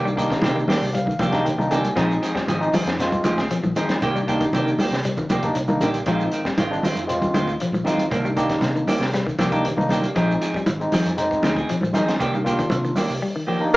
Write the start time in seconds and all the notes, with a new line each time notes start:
Already playing: C2
0.04 G3 D4 D#4, shekere
0.16 D#3 A#3 D4 D#4 G4, kick, closed hi-hat, shekere
0.30 D#3, kick, snare, closed hi-hat, shekere
0.42 C3 D#3 A#3 D4 G4, snare, closed hi-hat, high conga
0.46 shekere
0.56 D#3, shekere
0.68 D#3 A#3 D4 G4 D5, snare, open hi-hat, high conga, low conga, shekere
0.82 C2, shekere
0.93 G3 F5, closed hi-hat, shekere
1.06 D#3, kick, high conga, shekere
1.19 C2 D#3 F3 A#3 D4 G4, kick, closed hi-hat, high conga, shekere
1.31 A#3 D4 D#4 G4, kick, snare, closed hi-hat, shekere
1.45 D#3 G5, closed hi-hat, shekere
1.58 C2 D#3 A#3 D4 D#4, high conga, shekere
1.71 D3 D#3 A#3 D4 G4 G#5, closed hi-hat, low conga, shekere
1.84 closed hi-hat, high conga, shekere
1.95 A#1 F3 G#3 C4 D#4 G#4, kick, snare, closed hi-hat, shekere
2.11 shekere
2.22 F3 C4 D#4 G#4, closed hi-hat, shekere
2.35 G3, kick, snare, shekere
2.47 G#1 F3 C4 D#4 G#4, closed hi-hat, high conga, shekere
2.59 G#3 C4 D#4, shekere
2.73 F3 C4 D#4 G#4, open hi-hat, high conga, low conga, shekere
2.86 F2 C4 D#4, snare, closed hi-hat, shekere
2.99 G#3 C4 F4, snare, closed hi-hat, shekere
3.12 kick, high conga, shekere
3.24 D2 D3 F3 C4 D#4 G#4, closed hi-hat, high conga, shekere
3.38 C4 G#4, muted clean electric guitar stroke, kick, snare, shekere
3.51 F3, closed hi-hat, shekere
3.63 A#1 F3, high conga, shekere
3.76 D#3 F3 G#3 C4 D#4 G#4, closed hi-hat, high conga, low conga, shekere
3.89 muted fingered electric bass stroke, snare, closed hi-hat, high conga, shekere
4.02 C2 D#3 A#3 D4 G4, kick, closed hi-hat, shekere
4.14 G3 D4 D#4, shekere
4.27 D#3 A#3 D4 D#4 G4, kick, closed hi-hat, shekere
4.41 D#3, kick, closed hi-hat, shekere
4.52 C3 D#3 A#3 D4 G4, closed hi-hat, high conga, shekere
4.66 D#3, shekere
4.78 D#3 A#3 D4 G4, open hi-hat, high conga, low conga, shekere
4.91 C2, snare, shekere
5.05 G3, closed hi-hat, shekere
5.17 D#3, kick, low conga, shekere
5.30 C2 D#3 F3 A#3 D4 G4, kick, closed hi-hat, high conga, shekere
5.43 A#3 D4 D#4, kick, closed hi-hat, shekere
5.55 C2, muted clean electric guitar stroke, closed hi-hat, shekere
5.68 D#3 A#3 D4 D#4, high conga, shekere
5.81 A#1 D3 D#3 A#3 D4 G4, closed hi-hat, high conga, low conga, shekere
5.94 closed hi-hat, shekere
6.06 A#1 D#3 F3 G#3 C4 D#4 F4, kick, closed hi-hat, shekere
6.21 shekere
6.32 D#3 C4, muted clean electric guitar stroke, closed hi-hat, shekere
6.45 G3, kick, snare, shekere
6.57 G#1 D#3 G#3 C4 F4, closed hi-hat, high conga, shekere
6.71 G#3 C4 D4, shekere
6.83 D#3 G#3 C4 F4, open hi-hat, high conga, low conga, shekere
6.95 F2 C4 D#4, closed hi-hat, shekere
7.07 G#3 C4 F4, closed hi-hat, shekere
7.22 kick, high conga, low conga, shekere
7.34 D2 D3 D#3 G#3 C4 F4, closed hi-hat, high conga, shekere
7.48 kick, shekere
7.60 F3, closed hi-hat, shekere
7.72 A#1 F3, high conga, shekere
7.84 D#3 G#3 C4 D#4 F4, closed hi-hat, high conga, low conga, shekere
7.97 muted fingered electric bass stroke, closed hi-hat, high conga, shekere
8.11 C2 D#3 A#3 D4, muted clean electric guitar stroke, kick, closed hi-hat, shekere
8.23 G3 D4 D#4, shekere
8.36 D#3 A#3 D4 D#4 G4, kick, closed hi-hat, shekere
8.49 D#3, kick, snare, closed hi-hat, shekere
8.61 C3, snare, closed hi-hat, high conga, shekere
8.76 D#3, shekere
8.87 D#3 A#3 D4 G4, open hi-hat, high conga, low conga, shekere
9.00 C2, snare, shekere
9.14 G3, snare, closed hi-hat, shekere
9.27 D#3, kick, shekere
9.39 C2 D#3 F3 A#3 D4 G4, kick, snare, closed hi-hat, high conga, shekere
9.50 A#3 D4 D#4 G4, kick, closed hi-hat
9.55 shekere
9.65 D#3, closed hi-hat, shekere
9.76 C2 D#3 A#3 D4 D#4, high conga, shekere
9.89 D3 D#3 A#3 D4 G4, closed hi-hat, high conga, low conga, shekere
10.02 closed hi-hat, high conga, shekere
10.14 A#1 F3 G#3 C4 D#4 G#4, kick, closed hi-hat, shekere
10.31 shekere
10.41 F3 C4 D#4 G#4, closed hi-hat, shekere
10.54 G3, kick, shekere
10.66 G#1, closed hi-hat, high conga, shekere
10.80 G#3 C4 D#4, shekere
10.92 F3 C4 D#4 G#4, open hi-hat, high conga, low conga, shekere
11.05 F2 C4 D#4, closed hi-hat, shekere
11.17 G#3 C4 D#4, closed hi-hat, shekere
11.31 kick, shekere
11.43 D2 D3 F3 C4 D#4 G#4, snare, closed hi-hat, high conga, shekere
11.56 C4 D#4 G#4, kick, shekere
11.69 F3, closed hi-hat, shekere
11.81 A#1 F3, high conga, shekere
11.93 D#3 F3 G#3 C4 D#4 G#4, closed hi-hat, high conga, low conga, shekere
12.08 muted fingered electric bass stroke, snare, closed hi-hat, shekere
12.19 C2 D#3 A#3 D4 G4, kick, closed hi-hat, shekere
12.33 G3 D4 D#4, shekere
12.44 D#3 A#3 D4 F4 G4, kick, closed hi-hat, shekere
12.59 D#3, kick, closed hi-hat, shekere
12.70 C3, closed hi-hat, high conga, shekere
12.85 D#3, shekere
12.96 D#3 A#3 D4 G4, open hi-hat, high conga, low conga, shekere
13.10 C2, shekere
13.22 G3
13.36 D#3
13.47 D#3 F3 A#3 D4 G4
13.60 A#3 D4 D#4